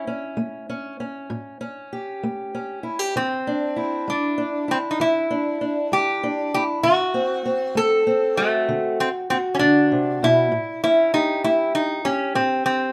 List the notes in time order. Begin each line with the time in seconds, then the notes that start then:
Already playing: E4
0.07 C#4
0.37 A3
0.69 C#4
1.00 C#4
1.30 A2
1.61 C#4
1.93 G4
2.23 A3
2.55 C#4
2.83 E4
2.99 G4
3.16 E3 C4
3.47 D4
3.76 E4
4.08 G#3 D4
4.38 D4
4.68 C4 E4
4.91 D#4
5.00 E3 E4
5.30 D4
5.61 D4
5.92 G#3 G4
6.23 D4
6.54 E4 G4
6.83 D3 F#4
7.14 C4
7.45 C4
7.75 A3 A4
8.07 C4
8.37 A3 F#4
8.68 D3
9.00 C4
9.30 C4 F#4
9.55 C#4
9.59 D3 D4
9.92 C3
10.23 B2 E4
10.52 A2
10.84 C#4 E4
11.14 D#4 G4
11.44 A3 E4
11.75 D#4
12.05 C#4 G4
12.35 A2 C4
12.66 C4